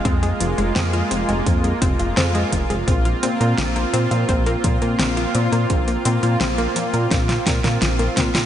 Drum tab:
HH |xxxxxxxxxxxxxxxx|xxxxxxxxxxxxxxxx|xxxxxxxxxxxxxxxx|
SD |----o-------o---|----o-------o---|----o---ooooo-oo|
BD |o-------o-o---o-|o-------o-o-----|o-------o-o---o-|